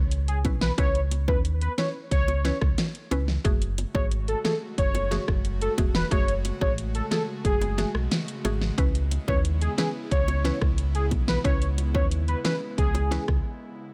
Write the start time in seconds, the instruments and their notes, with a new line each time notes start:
Already playing: sub bass C#2
0.11 closed hi-hat
0.28 soft synth lead G#4, closed hi-hat
0.45 sub bass B1, synth pluck C#4 E4 B4, kick, closed hi-hat, high bongo, low bongo
0.61 soft synth lead B4, snare
0.78 sub bass C#2, synth pluck C#4 E4 B4, soft synth lead C#5, kick, closed hi-hat
0.95 closed hi-hat
1.11 closed hi-hat, high bongo
1.28 sub bass D#2, synth pluck C#4 E4 B4, soft synth lead B4, kick, high bongo
1.45 closed hi-hat
1.61 soft synth lead B4, closed hi-hat
1.78 synth pluck C#4 E4 B4, soft synth lead C#5, snare, closed hi-hat, low bongo
2.11 sub bass C#2, soft synth lead C#5, kick, closed hi-hat
2.28 closed hi-hat, high bongo
2.45 synth pluck C#4 E4 B4, snare, closed hi-hat, high bongo
2.61 sub bass C#2, kick, cross-stick
2.78 snare, closed hi-hat
2.95 closed hi-hat
3.11 sub bass C#2, synth pluck C#4 E4 B4, closed hi-hat, high bongo, low bongo
3.28 snare
3.44 sub bass F#1, analog synth pad C#3 G#3 A3 F#4, synth pluck A3 F#4 G#4, kick, closed hi-hat
3.62 closed hi-hat
3.78 closed hi-hat, high bongo
3.95 sub bass G#1, synth pluck A3 F#4 G#4, soft synth lead C#5, kick, high bongo
4.11 closed hi-hat
4.28 soft synth lead A4, closed hi-hat
4.44 synth pluck A3 F#4 G#4, soft synth lead A4, snare, closed hi-hat
4.78 sub bass F#1, soft synth lead C#5, kick, closed hi-hat
4.95 closed hi-hat, high bongo
5.11 synth pluck A3 F#4 G#4, snare, closed hi-hat, high bongo
5.28 sub bass F#1, kick, cross-stick
5.45 closed hi-hat
5.62 soft synth lead A4, closed hi-hat
5.78 sub bass E1, synth pluck A3 F#4 G#4, kick, closed hi-hat, high bongo, low bongo
5.95 soft synth lead B4, snare
6.11 sub bass F#1, synth pluck A3 F#4 G#4, soft synth lead C#5, kick, closed hi-hat
6.28 closed hi-hat
6.45 closed hi-hat, high bongo
6.61 sub bass A1, synth pluck A3 F#4 G#4, soft synth lead C#5, kick, high bongo
6.78 closed hi-hat
6.95 soft synth lead A4, closed hi-hat
7.11 synth pluck A3 F#4 G#4, soft synth lead A4, snare, closed hi-hat
7.45 sub bass F#1, soft synth lead G#4, kick, closed hi-hat
7.61 closed hi-hat, high bongo
7.78 synth pluck A3 F#4 G#4, snare, closed hi-hat, high bongo
7.95 sub bass B1, cross-stick
8.11 snare, closed hi-hat
8.28 closed hi-hat
8.45 sub bass G#1, synth pluck A3 F#4 G#4, closed hi-hat, high bongo, low bongo
8.61 snare
8.78 sub bass C#2, analog synth pad B3 E4, synth pluck C#4 E4 B4, kick, closed hi-hat
8.95 closed hi-hat
9.11 closed hi-hat, high bongo
9.28 sub bass D#2, synth pluck C#4 E4 B4, soft synth lead C#5, kick, high bongo
9.45 closed hi-hat
9.61 soft synth lead G#4, closed hi-hat
9.78 synth pluck C#4 E4 B4, soft synth lead G#4, snare, closed hi-hat
10.11 sub bass C#2, soft synth lead C#5, kick, closed hi-hat
10.28 closed hi-hat, high bongo
10.44 synth pluck C#4 E4 B4, snare, closed hi-hat, high bongo
10.61 sub bass C#2, kick, cross-stick
10.78 closed hi-hat
10.95 soft synth lead G#4, closed hi-hat
11.11 sub bass B1, kick, closed hi-hat, high bongo, low bongo
11.28 soft synth lead B4, snare
11.44 sub bass C#2, synth pluck C#4 E4 B4, soft synth lead C#5, kick, closed hi-hat
11.62 closed hi-hat
11.78 closed hi-hat, high bongo
11.94 sub bass D#2, synth pluck C#4 E4 B4, soft synth lead C#5, kick, high bongo
12.11 closed hi-hat
12.28 soft synth lead B4, closed hi-hat
12.44 synth pluck C#4 E4 B4, soft synth lead B4, snare, closed hi-hat
12.78 sub bass C#2, soft synth lead G#4, kick, closed hi-hat
12.95 closed hi-hat, high bongo
13.11 synth pluck C#4 E4 B4, snare, closed hi-hat, high bongo
13.28 sub bass C#2, kick, cross-stick